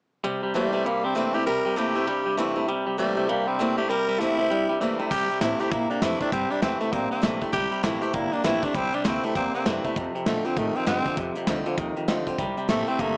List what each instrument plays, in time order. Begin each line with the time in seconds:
0.24 clean electric guitar C3 G3, steel-string acoustic guitar C3
0.43 clean electric guitar C3 G3
0.54 clean electric guitar C3 A3, steel-string acoustic guitar E3 A#3 C4 E4, tenor saxophone G3
0.73 clean electric guitar C3 A3, steel-string acoustic guitar C4 E4
0.85 steel-string acoustic guitar G2, clean electric guitar C3 G3, tenor saxophone A#3
1.04 clean electric guitar C3 G3, tenor saxophone C4
1.15 clean electric guitar C3 A3, steel-string acoustic guitar E3 A#3 C4 E4
1.34 clean electric guitar C3 A3, steel-string acoustic guitar C4 E4, tenor saxophone G4
1.46 clean electric guitar C3 G3, steel-string acoustic guitar C3, tenor saxophone A#4
1.65 clean electric guitar C3 G3
1.76 clean electric guitar C3 A3, steel-string acoustic guitar E3 A#3 C4 E4, tenor saxophone G4
1.95 clean electric guitar C3 A3, steel-string acoustic guitar C4 E4
2.07 steel-string acoustic guitar G2, clean electric guitar C3 G3
2.25 clean electric guitar C3 G3
2.37 clean electric guitar C3 A3, steel-string acoustic guitar E3 A#3 C4 E4
2.56 clean electric guitar C3 A3, steel-string acoustic guitar C4 E4
2.68 clean electric guitar C3 G3, steel-string acoustic guitar C3
2.86 clean electric guitar C3 G3
2.98 clean electric guitar C3 A3, steel-string acoustic guitar E3 A#3 C4 E4, tenor saxophone G3
3.17 clean electric guitar C3 A3, steel-string acoustic guitar C4 E4
3.28 steel-string acoustic guitar G2, clean electric guitar C3 G3, tenor saxophone A#3
3.47 clean electric guitar C3 G3, tenor saxophone C4
3.59 clean electric guitar C3 A3, steel-string acoustic guitar E3 A#3 C4 E4
3.77 clean electric guitar C3 A3, steel-string acoustic guitar C4 E4, tenor saxophone G4
3.89 clean electric guitar C3 G3, steel-string acoustic guitar C3, tenor saxophone A#4
4.08 clean electric guitar C3 G3
4.20 clean electric guitar C3 A3, steel-string acoustic guitar E3 A#3 C4 E4, tenor saxophone E4
4.38 clean electric guitar C3 A3, steel-string acoustic guitar C4 E4
4.50 steel-string acoustic guitar G2, clean electric guitar C3 G3
4.69 clean electric guitar C3 G3
4.80 clean electric guitar C3 A3, steel-string acoustic guitar E3 A#3 C4 E4
4.99 clean electric guitar C3 A3, steel-string acoustic guitar C4 E4
5.11 upright bass C3, clean electric guitar C3 G3, steel-string acoustic guitar C3, tenor saxophone G4, kick, crash
5.30 clean electric guitar C3 G3, muted upright bass stroke, closed hi-hat
5.41 upright bass A2, clean electric guitar C3 A3, steel-string acoustic guitar E3 A#3 C4 E4, tenor saxophone E4, snare, closed hi-hat
5.60 clean electric guitar C3 A3, steel-string acoustic guitar C4 E4, tenor saxophone G4, muted upright bass stroke, closed hi-hat
5.71 steel-string acoustic guitar G2, upright bass A#2, clean electric guitar C3 A#3, tenor saxophone E4, kick, closed hi-hat
5.90 clean electric guitar C3 A#3, tenor saxophone D4, closed hi-hat
6.02 upright bass F2, clean electric guitar C3 A3, steel-string acoustic guitar E3 A#3 C4 E4, tenor saxophone E4, snare, closed hi-hat
6.20 clean electric guitar C3 A3, steel-string acoustic guitar C4 E4, tenor saxophone D4, kick, closed hi-hat
6.32 upright bass G2, clean electric guitar C3 G3, steel-string acoustic guitar C3, tenor saxophone C4, kick, closed hi-hat
6.50 clean electric guitar C3 G3, tenor saxophone D4, closed hi-hat
6.62 upright bass E2, clean electric guitar C3 A3, steel-string acoustic guitar E3 A#3 C4 E4, tenor saxophone C4, snare, closed hi-hat
6.80 clean electric guitar C3 A3, tenor saxophone A3, steel-string acoustic guitar C4 E4, closed hi-hat
6.92 upright bass A1, steel-string acoustic guitar G2, clean electric guitar C3 A#3, tenor saxophone C4, kick, closed hi-hat
7.11 clean electric guitar C3 A#3, tenor saxophone C4, muted upright bass stroke, closed hi-hat
7.21 upright bass A#1, clean electric guitar C3 A3, steel-string acoustic guitar E3 A#3 C4 E4, snare, closed hi-hat
7.41 clean electric guitar C3 A3, steel-string acoustic guitar C4 E4, muted upright bass stroke, kick, closed hi-hat
7.53 upright bass C2, clean electric guitar C3 G3, steel-string acoustic guitar C3, tenor saxophone G4, kick, closed hi-hat
7.71 clean electric guitar C3 G3, closed hi-hat
7.83 upright bass A#1, clean electric guitar C3 A3, steel-string acoustic guitar E3 A#3 C4 E4, tenor saxophone E4, snare, closed hi-hat
8.02 clean electric guitar C3 A3, steel-string acoustic guitar C4 E4, tenor saxophone G4, closed hi-hat
8.13 upright bass G1, steel-string acoustic guitar G2, clean electric guitar C3 A#3, tenor saxophone E4, kick, closed hi-hat
8.32 clean electric guitar C3 A#3, tenor saxophone D4, muted upright bass stroke, closed hi-hat
8.44 upright bass A#1, clean electric guitar C3 A3, steel-string acoustic guitar E3 A#3 C4 E4, tenor saxophone E4, snare, closed hi-hat
8.62 clean electric guitar C3 A3, steel-string acoustic guitar C4 E4, tenor saxophone D4, kick, closed hi-hat
8.74 upright bass C2, clean electric guitar C3 G3, steel-string acoustic guitar C3, tenor saxophone C4, kick, closed hi-hat
8.93 clean electric guitar C3 G3, tenor saxophone D4, closed hi-hat
9.04 upright bass D2, clean electric guitar C3 A3, steel-string acoustic guitar E3 A#3 C4 E4, tenor saxophone C4, snare, closed hi-hat
9.23 clean electric guitar C3 A3, tenor saxophone A3, steel-string acoustic guitar C4 E4, muted upright bass stroke, closed hi-hat
9.35 upright bass E2, steel-string acoustic guitar G2, clean electric guitar C3 A#3, tenor saxophone C4, kick, closed hi-hat
9.54 clean electric guitar C3 A#3, tenor saxophone C4, muted upright bass stroke, closed hi-hat
9.66 upright bass F#2, clean electric guitar C3 A3, steel-string acoustic guitar E3 A#3 C4 E4, snare, closed hi-hat
9.84 clean electric guitar C3 A3, steel-string acoustic guitar C4 E4, kick, closed hi-hat
9.96 clean electric guitar F2 C3, upright bass F2, steel-string acoustic guitar F2, kick, closed hi-hat
10.15 clean electric guitar F2 C3, muted upright bass stroke, closed hi-hat
10.26 clean electric guitar F2 D3, upright bass A#2, steel-string acoustic guitar D#3 A3 C4 F4, tenor saxophone A3, snare, closed hi-hat
10.45 clean electric guitar F2 D3, tenor saxophone C4, steel-string acoustic guitar C4 F4, closed hi-hat
10.57 clean electric guitar F2 D#3, upright bass A2, steel-string acoustic guitar C3, tenor saxophone A3, kick, closed hi-hat
10.75 clean electric guitar F2 D#3, tenor saxophone C4, closed hi-hat
10.86 clean electric guitar F2 D3, upright bass G2, steel-string acoustic guitar D#3 A3 C4 F4, tenor saxophone C4, snare, closed hi-hat
11.05 clean electric guitar F2 D3, steel-string acoustic guitar C4 F4, kick, closed hi-hat
11.17 upright bass F2, steel-string acoustic guitar F2, clean electric guitar F2 C3, kick, closed hi-hat
11.35 clean electric guitar F2 C3, closed hi-hat
11.47 upright bass C2, clean electric guitar F2 D3, steel-string acoustic guitar D#3 A3 C4 F4, snare, closed hi-hat
11.66 clean electric guitar F2 D3, steel-string acoustic guitar C4 F4, closed hi-hat
11.77 upright bass D#2, clean electric guitar F2 D#3, steel-string acoustic guitar C3, kick, closed hi-hat
11.96 clean electric guitar F2 D#3, closed hi-hat
12.08 upright bass D2, clean electric guitar F2 D3, steel-string acoustic guitar D#3 A3 C4 F4, snare, closed hi-hat
12.27 clean electric guitar F2 D3, steel-string acoustic guitar C4 F4, kick, closed hi-hat
12.38 upright bass C2, clean electric guitar C3 G3, steel-string acoustic guitar C3, kick, closed hi-hat
12.57 clean electric guitar C3 G3, muted upright bass stroke, closed hi-hat
12.69 upright bass A1, clean electric guitar C3 A3, steel-string acoustic guitar E3 A#3 C4 E4, tenor saxophone A3, snare, closed hi-hat
12.87 clean electric guitar C3 A3, tenor saxophone C4, steel-string acoustic guitar C4 E4, muted upright bass stroke, closed hi-hat
12.99 upright bass G1, steel-string acoustic guitar G2, clean electric guitar C3 A#3, tenor saxophone A3, kick, closed hi-hat